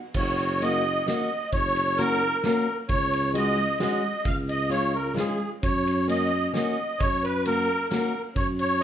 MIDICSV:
0, 0, Header, 1, 5, 480
1, 0, Start_track
1, 0, Key_signature, 6, "major"
1, 0, Tempo, 455927
1, 161, Time_signature, 3, 2, 24, 8
1, 9299, End_track
2, 0, Start_track
2, 0, Title_t, "Accordion"
2, 0, Program_c, 0, 21
2, 168, Note_on_c, 0, 73, 87
2, 648, Note_on_c, 0, 75, 105
2, 664, Note_off_c, 0, 73, 0
2, 1116, Note_off_c, 0, 75, 0
2, 1132, Note_on_c, 0, 75, 80
2, 1578, Note_off_c, 0, 75, 0
2, 1608, Note_on_c, 0, 73, 93
2, 2087, Note_on_c, 0, 70, 110
2, 2105, Note_off_c, 0, 73, 0
2, 2558, Note_off_c, 0, 70, 0
2, 2574, Note_on_c, 0, 70, 75
2, 2910, Note_off_c, 0, 70, 0
2, 3040, Note_on_c, 0, 73, 96
2, 3487, Note_off_c, 0, 73, 0
2, 3528, Note_on_c, 0, 75, 107
2, 3990, Note_off_c, 0, 75, 0
2, 4005, Note_on_c, 0, 75, 86
2, 4476, Note_on_c, 0, 77, 87
2, 4496, Note_off_c, 0, 75, 0
2, 4589, Note_off_c, 0, 77, 0
2, 4734, Note_on_c, 0, 75, 97
2, 4944, Note_off_c, 0, 75, 0
2, 4963, Note_on_c, 0, 73, 87
2, 5210, Note_on_c, 0, 70, 71
2, 5218, Note_off_c, 0, 73, 0
2, 5424, Note_off_c, 0, 70, 0
2, 5442, Note_on_c, 0, 68, 66
2, 5784, Note_off_c, 0, 68, 0
2, 5929, Note_on_c, 0, 73, 79
2, 6377, Note_off_c, 0, 73, 0
2, 6417, Note_on_c, 0, 75, 100
2, 6861, Note_off_c, 0, 75, 0
2, 6890, Note_on_c, 0, 75, 79
2, 7364, Note_on_c, 0, 73, 96
2, 7384, Note_off_c, 0, 75, 0
2, 7621, Note_on_c, 0, 71, 84
2, 7624, Note_off_c, 0, 73, 0
2, 7833, Note_off_c, 0, 71, 0
2, 7854, Note_on_c, 0, 70, 104
2, 8293, Note_off_c, 0, 70, 0
2, 8309, Note_on_c, 0, 70, 75
2, 8651, Note_off_c, 0, 70, 0
2, 8801, Note_on_c, 0, 73, 89
2, 8912, Note_off_c, 0, 73, 0
2, 9056, Note_on_c, 0, 73, 98
2, 9287, Note_off_c, 0, 73, 0
2, 9299, End_track
3, 0, Start_track
3, 0, Title_t, "Steel-string acoustic guitar"
3, 0, Program_c, 1, 25
3, 648, Note_on_c, 1, 58, 52
3, 655, Note_on_c, 1, 61, 46
3, 661, Note_on_c, 1, 66, 51
3, 875, Note_off_c, 1, 58, 0
3, 877, Note_off_c, 1, 61, 0
3, 877, Note_off_c, 1, 66, 0
3, 1120, Note_on_c, 1, 58, 57
3, 1127, Note_on_c, 1, 61, 51
3, 1132, Note_on_c, 1, 66, 57
3, 1353, Note_off_c, 1, 58, 0
3, 1354, Note_off_c, 1, 61, 0
3, 1354, Note_off_c, 1, 66, 0
3, 2094, Note_on_c, 1, 58, 53
3, 2095, Note_on_c, 1, 61, 54
3, 2096, Note_on_c, 1, 66, 73
3, 2318, Note_off_c, 1, 61, 0
3, 2319, Note_off_c, 1, 58, 0
3, 2320, Note_off_c, 1, 66, 0
3, 2576, Note_on_c, 1, 58, 66
3, 2583, Note_on_c, 1, 61, 54
3, 2588, Note_on_c, 1, 66, 55
3, 2799, Note_off_c, 1, 58, 0
3, 2800, Note_off_c, 1, 61, 0
3, 2800, Note_off_c, 1, 66, 0
3, 3515, Note_on_c, 1, 56, 63
3, 3524, Note_on_c, 1, 61, 46
3, 3527, Note_on_c, 1, 66, 48
3, 3746, Note_off_c, 1, 56, 0
3, 3746, Note_off_c, 1, 66, 0
3, 3747, Note_off_c, 1, 61, 0
3, 4000, Note_on_c, 1, 56, 62
3, 4001, Note_on_c, 1, 61, 52
3, 4009, Note_on_c, 1, 66, 68
3, 4226, Note_off_c, 1, 56, 0
3, 4226, Note_off_c, 1, 61, 0
3, 4226, Note_off_c, 1, 66, 0
3, 4945, Note_on_c, 1, 65, 63
3, 4949, Note_on_c, 1, 56, 47
3, 4958, Note_on_c, 1, 61, 42
3, 5177, Note_off_c, 1, 65, 0
3, 5180, Note_off_c, 1, 56, 0
3, 5181, Note_off_c, 1, 61, 0
3, 5414, Note_on_c, 1, 56, 56
3, 5423, Note_on_c, 1, 61, 64
3, 5424, Note_on_c, 1, 65, 63
3, 5656, Note_off_c, 1, 56, 0
3, 5656, Note_off_c, 1, 65, 0
3, 5657, Note_off_c, 1, 61, 0
3, 6398, Note_on_c, 1, 58, 62
3, 6403, Note_on_c, 1, 66, 56
3, 6405, Note_on_c, 1, 61, 52
3, 6630, Note_off_c, 1, 58, 0
3, 6630, Note_off_c, 1, 66, 0
3, 6633, Note_off_c, 1, 61, 0
3, 6881, Note_on_c, 1, 58, 55
3, 6882, Note_on_c, 1, 61, 51
3, 6889, Note_on_c, 1, 66, 61
3, 7111, Note_off_c, 1, 61, 0
3, 7112, Note_off_c, 1, 66, 0
3, 7113, Note_off_c, 1, 58, 0
3, 7858, Note_on_c, 1, 58, 64
3, 7866, Note_on_c, 1, 66, 52
3, 7868, Note_on_c, 1, 61, 47
3, 8078, Note_off_c, 1, 58, 0
3, 8080, Note_off_c, 1, 61, 0
3, 8081, Note_off_c, 1, 66, 0
3, 8322, Note_on_c, 1, 61, 58
3, 8328, Note_on_c, 1, 58, 62
3, 8333, Note_on_c, 1, 66, 71
3, 8545, Note_off_c, 1, 61, 0
3, 8549, Note_off_c, 1, 66, 0
3, 8550, Note_off_c, 1, 58, 0
3, 9299, End_track
4, 0, Start_track
4, 0, Title_t, "Tuba"
4, 0, Program_c, 2, 58
4, 155, Note_on_c, 2, 30, 91
4, 1099, Note_off_c, 2, 30, 0
4, 1606, Note_on_c, 2, 30, 86
4, 2542, Note_off_c, 2, 30, 0
4, 3046, Note_on_c, 2, 37, 88
4, 3977, Note_off_c, 2, 37, 0
4, 4481, Note_on_c, 2, 37, 89
4, 5420, Note_off_c, 2, 37, 0
4, 5933, Note_on_c, 2, 42, 96
4, 6870, Note_off_c, 2, 42, 0
4, 7373, Note_on_c, 2, 42, 84
4, 8300, Note_off_c, 2, 42, 0
4, 8798, Note_on_c, 2, 42, 84
4, 9299, Note_off_c, 2, 42, 0
4, 9299, End_track
5, 0, Start_track
5, 0, Title_t, "Drums"
5, 150, Note_on_c, 9, 49, 64
5, 154, Note_on_c, 9, 36, 74
5, 255, Note_off_c, 9, 49, 0
5, 260, Note_off_c, 9, 36, 0
5, 411, Note_on_c, 9, 51, 28
5, 516, Note_off_c, 9, 51, 0
5, 654, Note_on_c, 9, 51, 38
5, 759, Note_off_c, 9, 51, 0
5, 1134, Note_on_c, 9, 38, 51
5, 1134, Note_on_c, 9, 51, 38
5, 1240, Note_off_c, 9, 38, 0
5, 1240, Note_off_c, 9, 51, 0
5, 1603, Note_on_c, 9, 51, 36
5, 1607, Note_on_c, 9, 36, 71
5, 1708, Note_off_c, 9, 51, 0
5, 1712, Note_off_c, 9, 36, 0
5, 1855, Note_on_c, 9, 51, 34
5, 1960, Note_off_c, 9, 51, 0
5, 2083, Note_on_c, 9, 51, 41
5, 2188, Note_off_c, 9, 51, 0
5, 2564, Note_on_c, 9, 38, 55
5, 2564, Note_on_c, 9, 51, 38
5, 2670, Note_off_c, 9, 38, 0
5, 2670, Note_off_c, 9, 51, 0
5, 3040, Note_on_c, 9, 51, 45
5, 3046, Note_on_c, 9, 36, 80
5, 3145, Note_off_c, 9, 51, 0
5, 3152, Note_off_c, 9, 36, 0
5, 3299, Note_on_c, 9, 51, 37
5, 3405, Note_off_c, 9, 51, 0
5, 3528, Note_on_c, 9, 51, 50
5, 3633, Note_off_c, 9, 51, 0
5, 4003, Note_on_c, 9, 38, 53
5, 4003, Note_on_c, 9, 51, 34
5, 4109, Note_off_c, 9, 38, 0
5, 4109, Note_off_c, 9, 51, 0
5, 4475, Note_on_c, 9, 51, 41
5, 4478, Note_on_c, 9, 36, 82
5, 4580, Note_off_c, 9, 51, 0
5, 4583, Note_off_c, 9, 36, 0
5, 4728, Note_on_c, 9, 51, 38
5, 4833, Note_off_c, 9, 51, 0
5, 4963, Note_on_c, 9, 51, 39
5, 5068, Note_off_c, 9, 51, 0
5, 5444, Note_on_c, 9, 38, 54
5, 5444, Note_on_c, 9, 51, 34
5, 5550, Note_off_c, 9, 38, 0
5, 5550, Note_off_c, 9, 51, 0
5, 5929, Note_on_c, 9, 36, 78
5, 5937, Note_on_c, 9, 51, 39
5, 6034, Note_off_c, 9, 36, 0
5, 6042, Note_off_c, 9, 51, 0
5, 6184, Note_on_c, 9, 51, 41
5, 6290, Note_off_c, 9, 51, 0
5, 6415, Note_on_c, 9, 51, 46
5, 6521, Note_off_c, 9, 51, 0
5, 6898, Note_on_c, 9, 38, 48
5, 6898, Note_on_c, 9, 51, 31
5, 7004, Note_off_c, 9, 38, 0
5, 7004, Note_off_c, 9, 51, 0
5, 7370, Note_on_c, 9, 51, 39
5, 7375, Note_on_c, 9, 36, 82
5, 7475, Note_off_c, 9, 51, 0
5, 7481, Note_off_c, 9, 36, 0
5, 7630, Note_on_c, 9, 51, 40
5, 7735, Note_off_c, 9, 51, 0
5, 7849, Note_on_c, 9, 51, 44
5, 7954, Note_off_c, 9, 51, 0
5, 8330, Note_on_c, 9, 38, 48
5, 8330, Note_on_c, 9, 51, 34
5, 8435, Note_off_c, 9, 38, 0
5, 8435, Note_off_c, 9, 51, 0
5, 8800, Note_on_c, 9, 51, 39
5, 8802, Note_on_c, 9, 36, 75
5, 8906, Note_off_c, 9, 51, 0
5, 8907, Note_off_c, 9, 36, 0
5, 9044, Note_on_c, 9, 51, 32
5, 9149, Note_off_c, 9, 51, 0
5, 9299, End_track
0, 0, End_of_file